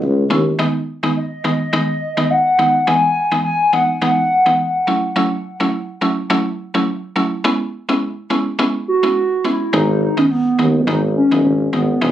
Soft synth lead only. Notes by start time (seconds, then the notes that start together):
1.16 D#5
2.30 F#5
2.87 G#5
3.45 G#5
3.73 F#5
4.02 F#5
8.88 F#4
9.45 E4
9.74 D#4
10.02 D#4
10.18 C#4
10.31 B3
10.88 D#4
11.16 C#4
11.74 B3